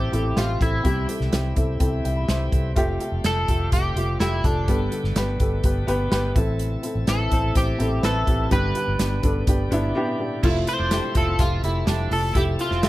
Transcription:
Already playing: A2 C3 E3 A3 C4 E4 G4 A4 C5
0.12 A1 C4 E4 A4, closed hi-hat
0.36 A1 C4 E4 F4 G4, snare, closed hi-hat
0.60 A1 C4 E4 A4, kick, closed hi-hat
0.84 C2 C3 G3 C4 E4 G4, kick, closed hi-hat
1.08 C4 E4 A4, closed hi-hat
1.20 C2, snare
1.32 C2 C4 E4 G4, snare, closed hi-hat
1.56 C2 C4 E4 A4 E5, kick, closed hi-hat
1.80 C2 C4 E4 A4 G5, kick, closed hi-hat
2.05 C2 E5 G5, closed hi-hat
2.16 B5
2.29 C2 C5 E5 C6, snare, closed hi-hat
2.52 C2 A4 C5, kick, closed hi-hat
2.76 F1 C3 G3 A3 F4 G4, kick, closed hi-hat
3.00 A3 F4 G4, closed hi-hat
3.12 F1
3.24 F1 A3 F4 A4, snare, closed hi-hat
3.48 F1 A3 F4 G4, kick, closed hi-hat
3.72 F1 A3 F4 G4, kick, closed hi-hat
3.96 F1 A3 F4 G4, closed hi-hat
4.19 F1 A3 E4 F4 G4, snare, closed hi-hat
4.44 F1 A3 D4 F4 A4, kick, closed hi-hat
4.68 G1 G2 D3 B3 G4 A4, kick, closed hi-hat
4.91 B3 G4 A4, closed hi-hat
5.04 G1, snare
5.16 G1 B3 G4 B4, snare, closed hi-hat
5.40 G1 B3 G4 A4, kick, closed hi-hat
5.63 G1 B3 G4 B4, kick, closed hi-hat
5.87 G1 B3 G4 B4, closed hi-hat
6.11 G1 B3 G4 B4, snare, closed hi-hat
6.35 A1 A2 C3 E3 C4 E4 A4, kick, closed hi-hat
6.59 closed hi-hat
6.83 C4 E4 A4, closed hi-hat
6.95 A1
7.07 A1 C4 E4 A4 B4, snare, closed hi-hat
7.31 A1 C4 E4 C5, kick, closed hi-hat
7.55 A1 C4 E4 G4 C5, kick, closed hi-hat
7.79 A1 C4 E4 A4, closed hi-hat
8.03 A1 C4 E4 A4 B4, snare, closed hi-hat
8.26 A1 C4 E4 G4, kick, closed hi-hat
8.51 G1 G2 B2 D3 G3 B3 D4 G4 B4, kick, closed hi-hat
8.75 B3 D4 G4, closed hi-hat
8.88 G1
8.98 G1 B3 D4 G4, snare, closed hi-hat
9.22 G1 B3 D4 A4, kick, closed hi-hat
9.47 G1 B3 D4 G4, kick, closed hi-hat
9.71 G1 B3 D4 E4, closed hi-hat
9.95 B3 D4 G4
10.19 B3 D4 G4
10.43 F1 C3 F3 A3 E4 F4 A4 E5, kick, crash
10.67 A3 E4 F4 C5, closed hi-hat
10.79 F1 D4
10.91 A3 E4 G4, snare, closed hi-hat
11.15 F1 A3 C4 E4 F4 A4, kick, closed hi-hat
11.39 F1 A3 E4 F4 G4, kick, closed hi-hat
11.63 F1 A3 E4 G4, closed hi-hat
11.87 F1 A3 D4 E4 G4, snare, closed hi-hat
12.11 F1 A3 E4 F4 A4, open hi-hat
12.34 F1 C3 A3 E4 G4, kick, closed hi-hat
12.58 A3 E4 F4, closed hi-hat
12.71 F1 C4, snare
12.82 A3 C4 E4 G4, snare, closed hi-hat

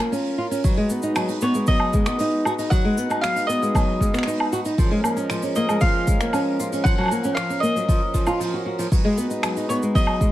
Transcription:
Already playing: C#4 F4 A#4
0.00 A#3
0.12 C#4, open hi-hat, cabasa
0.17 open hi-hat
0.21 open hi-hat
0.25 open hi-hat
0.30 open hi-hat
0.34 open hi-hat
0.38 F4
0.51 C#4, open hi-hat, cabasa
0.55 open hi-hat
0.59 open hi-hat
0.64 F#3 G#3 D#4 F#4 B4, kick, open hi-hat, cabasa
0.77 G#3, open hi-hat
0.90 B3, cabasa
1.02 D#4, cabasa
1.16 F#3, finger snap, open hi-hat, cabasa, low woodblock
1.29 D#4, open hi-hat, cabasa
1.41 B3 C#5, cabasa
1.54 G#3, cabasa
1.67 F#3 D#5, kick, open hi-hat, cabasa
1.80 low woodblock
1.93 G#3, kick, cabasa
2.06 B3, finger snap, open hi-hat, cabasa
2.19 D#4, open hi-hat, cabasa
2.45 F#4, cabasa, low woodblock
2.58 D#4, open hi-hat, cabasa
2.70 F#3 F#5, kick, open hi-hat, cabasa
2.85 G#3, open hi-hat
2.98 B3, cabasa
3.10 D#4, cabasa, low woodblock
3.21 F#3 F5, finger snap, open hi-hat, cabasa
3.36 D#4, open hi-hat, cabasa
3.47 B3 D#5, cabasa
3.62 G#3, cabasa
3.75 F#3, kick, open hi-hat, cabasa, low woodblock
4.01 G#3, kick, cabasa
4.13 B3, finger snap, open hi-hat, cabasa
4.18 finger snap
4.23 finger snap
4.27 D#4, open hi-hat, cabasa
4.30 open hi-hat
4.34 open hi-hat
4.37 open hi-hat, low woodblock
4.53 F#4, cabasa
4.65 D#4, open hi-hat, cabasa
4.78 F3 G#3 C#4 A#4, kick, open hi-hat, cabasa
4.91 G#3, open hi-hat
5.04 A#3, cabasa, low woodblock
5.17 C#4, cabasa
5.30 F3, finger snap, open hi-hat, cabasa
5.42 C#4, open hi-hat, cabasa
5.56 A#3 D#5, cabasa
5.69 G#3, cabasa, low woodblock
5.81 F3 F5, kick, open hi-hat, cabasa
6.07 G#3, kick, cabasa
6.20 A#3, finger snap, open hi-hat, cabasa
6.33 C#4, open hi-hat, cabasa, low woodblock
6.60 F4, cabasa
6.72 C#4, open hi-hat, cabasa
6.84 F3 F#5, kick, open hi-hat, cabasa
6.98 F#3, low woodblock
7.01 low woodblock
7.03 open hi-hat, low woodblock
7.06 low woodblock
7.08 A#3, cabasa, low woodblock
7.24 C#4, cabasa
7.35 F3 F5, finger snap, open hi-hat, cabasa
7.50 C#4, open hi-hat, cabasa
7.60 A#3 D#5, cabasa
7.76 F#3, cabasa
7.88 F3, kick, open hi-hat, cabasa
8.14 F3, kick, open hi-hat, cabasa
8.27 F4, open hi-hat, cabasa, low woodblock
8.31 open hi-hat
8.34 open hi-hat
8.37 F3, open hi-hat
8.40 open hi-hat, cabasa
8.44 open hi-hat
8.47 open hi-hat
8.50 F#4, open hi-hat
8.66 F#4
8.78 F3, open hi-hat, cabasa
8.91 F#3 G#3 D#4 F#4 B4, kick, open hi-hat, cabasa
9.05 G#3, open hi-hat
9.17 B3, cabasa
9.30 D#4, cabasa
9.43 F#3, finger snap, open hi-hat, cabasa, low woodblock
9.56 D#4, open hi-hat, cabasa
9.69 B3 C#5, cabasa
9.82 G#3, cabasa
9.95 F#3 D#5, kick, open hi-hat, cabasa
10.07 low woodblock
10.21 G#3, kick, cabasa

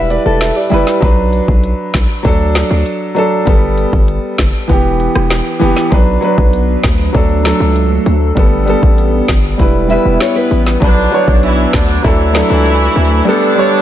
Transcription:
Already playing: E1 G3 E4 B4 E5
0.10 B4 D5, closed hi-hat
0.26 E1 A4
0.41 E5, snare, closed hi-hat
0.56 G4 D5
0.70 F#1 G3 E4 B4, closed hi-hat
0.87 snare
1.00 B1 F#3 D4 B4, kick, closed hi-hat
1.33 closed hi-hat
1.48 B1, kick
1.64 closed hi-hat
1.94 B1, kick, snare, closed hi-hat
2.23 D2 F#3 D4 A4, kick, closed hi-hat
2.55 snare, closed hi-hat
2.71 D2
2.86 closed hi-hat
3.15 F#3 D4 A4, closed hi-hat
3.45 G1 G3 B3 A4, kick, closed hi-hat
3.78 closed hi-hat
3.93 G1, kick
4.08 closed hi-hat
4.38 F#1, kick, snare, closed hi-hat
4.68 E1 E3 B3 G4, kick, closed hi-hat
5.00 closed hi-hat
5.15 E1, cross-stick
5.30 snare, closed hi-hat
5.59 F#1 E3 B3 G4, closed hi-hat
5.77 snare
5.90 B1 F#3 B3 D4 B4, kick, closed hi-hat
6.21 F#3 D4 B4, closed hi-hat
6.38 B1, kick
6.53 closed hi-hat
6.84 D2, kick, snare, closed hi-hat
7.13 D2 F#3 A3 D4 A4, kick, closed hi-hat
7.43 F#3 D4 A4, snare, closed hi-hat
7.60 C#2
7.76 closed hi-hat
8.06 D2, closed hi-hat
8.35 G1 G3 B3 A4, kick, closed hi-hat
8.66 G3 B3 A4, closed hi-hat
8.83 A1, kick
8.98 closed hi-hat
9.28 G1, kick, snare, closed hi-hat
9.58 E1 G3 B3 E4 B4, kick, closed hi-hat
9.88 G3 E4 B4 E5, closed hi-hat
10.05 E1
10.20 C#5, snare, closed hi-hat
10.36 B4
10.51 A1, closed hi-hat
10.66 snare
10.80 B1 D3 F#3 D4 B4, kick, closed hi-hat
11.11 F#3 D4 C#5, closed hi-hat
11.28 B1, kick
11.43 E3 E4, closed hi-hat
11.73 D2 D3 D4, kick, snare, closed hi-hat
12.02 D2 E3 F#3 A3 D4 E4 A4, kick, closed hi-hat
12.33 F#3 D4 A4, snare, closed hi-hat
12.50 C#2
12.66 closed hi-hat
12.96 D2, closed hi-hat
13.25 D3 G3 B3 D4 A4
13.55 G3 B3 C#5

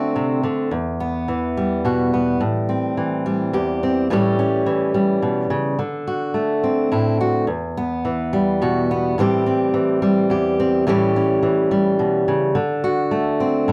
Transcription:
Already playing: D3 A3 C4 F#4
0.16 C3
0.43 D3
0.71 E2
1.00 B3
1.28 E3
1.57 G3
1.85 B2 F#4
2.14 B3
2.41 A2
2.69 C4
2.97 E3
3.26 G3
3.53 E2 G4
3.83 C4
4.10 A2 E3 G3 C#4 G4
4.39 C#4
4.66 E3
4.94 G3
5.22 B2
5.50 C#3
5.79 D3
6.07 F#4
6.34 A3
6.64 C4
6.92 A2 E4
7.21 F#4
7.47 E2
7.77 B3
8.05 E3
8.33 G3
8.62 B2 F#4
8.91 B3
9.18 A2 E3 G3 C4 G4
9.46 C4
9.74 E3
10.02 G3
10.30 E2 G4
10.60 C4
10.87 A2 E3 G3 C#4 G4
11.16 C#4
11.43 E3
11.71 G3
11.99 B2
12.28 C#3
12.55 D3
12.84 F#4
13.11 A3
13.40 C4
13.68 A2 E4

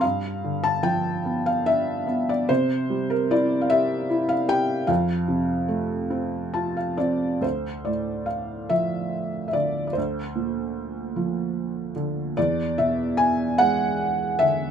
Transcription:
0.01 G2 F5
0.44 D3
0.64 A5
0.83 F3 G5
1.25 B3
1.46 F5
1.66 D4 E5
2.07 B3
2.29 D5
2.49 C3 C5
2.90 G3
3.10 A#4
3.30 E4 D5
3.61 F5
3.70 G4 E5
4.10 E4
4.29 F5
4.48 G4 G5
4.87 F2 F5
5.28 C3
5.68 A3
6.10 C4
6.54 F4 A5
6.77 F5
6.97 C4 D5
7.41 D2 C5
7.85 A2 D5
8.26 F5
8.70 F3 E5
9.48 E5
9.53 D3 D5
9.87 D5
9.93 C5
9.97 D2
10.36 A#2
11.16 F3
11.96 D3
12.37 E2 D5
12.78 B2 E5
13.17 G#5
13.58 G#3 F#5
14.39 D3 E5

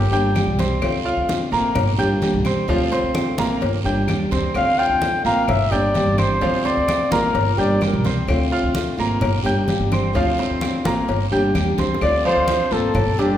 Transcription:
Already playing: G1 G4
0.12 G1 G3 A#3 D4 G4 G5 G6, high conga
0.34 G3 A#3 D4 G4, cowbell, high conga, short guiro, claves
0.47 C2
0.59 C4 C5 C6, cowbell, high conga, short guiro
0.82 D2 D3 A3 C4 F4, cowbell, high conga, long guiro, claves
1.05 F4 F5 F6, high conga
1.17 D2
1.28 D3 A3 C4 F4, cowbell, high conga, short guiro
1.51 A1 A3 A#3 C4 F4 A#4 A#5, high conga, short guiro
1.75 G1, muted nylon-string guitar stroke, cowbell, high conga, low conga, long guiro, claves
1.98 G1 G3 A#3 D4 G4 G5 G6, cowbell, high conga
2.21 G3 A#3 D4 G4, cowbell, high conga, short guiro
2.33 C#2
2.45 C4 C5 C6, cowbell, high conga, short guiro, claves
2.68 D2 D3 F3 A3 C4 F4 F5, cowbell, high conga, long guiro
2.91 C4 C5 C6, cowbell, high conga
3.03 D2
3.15 D3 A3 C4 F4, cowbell, high conga, short guiro, claves
3.38 A1 A3 A#3 C4 F4 A#4 A#5, cowbell, high conga, short guiro
3.61 G1, muted nylon-string guitar stroke, cowbell, high conga, long guiro
3.84 G1 G3 A#3 D4 G4 G5 G6, high conga
4.08 E2 G3 A#3 D4 G4, cowbell, high conga, short guiro, claves
4.31 D2 C4 C5 C6, cowbell, high conga, short guiro
4.54 D2 D3 A3 C4 F4 F5, cowbell, high conga, long guiro, claves
4.79 F4 F5 G5 F6, high conga
4.90 D2
5.01 D3 A3 C4 F4, cowbell, high conga, short guiro
5.25 A1 A3 A#3 C4 F4 A#4 F5 A#5, high conga, short guiro
5.48 G1 E5, muted nylon-string guitar stroke, cowbell, high conga, low conga, long guiro, claves
5.71 G1 G3 A#3 D4 G4 D5 G5 G6, cowbell, high conga
5.94 G3 A#3 D4 G4, cowbell, high conga, short guiro
6.06 G1
6.18 C4 C5 C6, cowbell, high conga, short guiro, claves
6.41 D2 D3 F3 A3 C4 F4 F5, cowbell, high conga, long guiro
6.65 C4 C5 D5 C6, cowbell, high conga
6.77 D2
6.87 D3 A3 C4 F4, cowbell, high conga, short guiro, claves
7.11 A1 A3 A#3 C4 F4 A#4 A#5, cowbell, high conga, short guiro
7.34 G1, muted nylon-string guitar stroke, cowbell, high conga, long guiro
7.57 G1 G3 A#3 D4 G4 D5 G5 G6, high conga
7.81 G3 A#3 D4 G4 A#4, cowbell, high conga, short guiro, claves
7.93 C2
8.05 C4 C5 C6, cowbell, high conga, short guiro
8.28 D2 D3 A3 C4 F4, cowbell, high conga, long guiro, claves
8.51 F4 F5 F6, high conga
8.63 D2
8.74 D3 A3 C4 F4, cowbell, high conga, short guiro
8.97 G#1 A3 A#3 C4 F4 A#4 A#5, high conga, short guiro
9.21 G1, muted nylon-string guitar stroke, cowbell, high conga, low conga, long guiro, claves
9.44 G1 G3 A#3 D4 G4 G5 G6, cowbell, high conga
9.67 G3 A#3 D4 G4, cowbell, high conga, short guiro
9.80 G1
9.92 C4 C5 C6, cowbell, high conga, short guiro, claves
10.13 D2 D3 F3 A3 C4 F4 F5, cowbell, high conga, long guiro
10.39 C4 C5 C6, cowbell, high conga
10.50 D2
10.61 D3 A3 C4 F4, cowbell, high conga, short guiro, claves
10.84 A1 A3 A#3 C4 F4 A#4 A#5, cowbell, high conga, short guiro
11.08 G1, muted nylon-string guitar stroke, cowbell, high conga, long guiro
11.32 G1 G3 A#3 D4 G4 G5 G6, high conga
11.54 E2 G3 A#3 D4 G4, cowbell, high conga, short guiro, claves
11.78 D2 C4 C5 C6, cowbell, high bongo, high conga, short guiro
11.95 low bongo
12.01 D2 D3 A3 C4 F4 D5, cowbell, high conga, long guiro, claves
12.24 F3 F4 C5 F5, high conga
12.36 D2
12.48 D3 A3 C4 F4, cowbell, high conga, short guiro
12.71 G#1 A3 A#3 C4 F4 A4 C5 A5, high conga, short guiro
12.94 G1, muted nylon-string guitar stroke, cowbell, high conga, low conga, long guiro, claves
13.07 G1
13.18 G3 A#3 D4 G4 D5 D6, cowbell, high conga

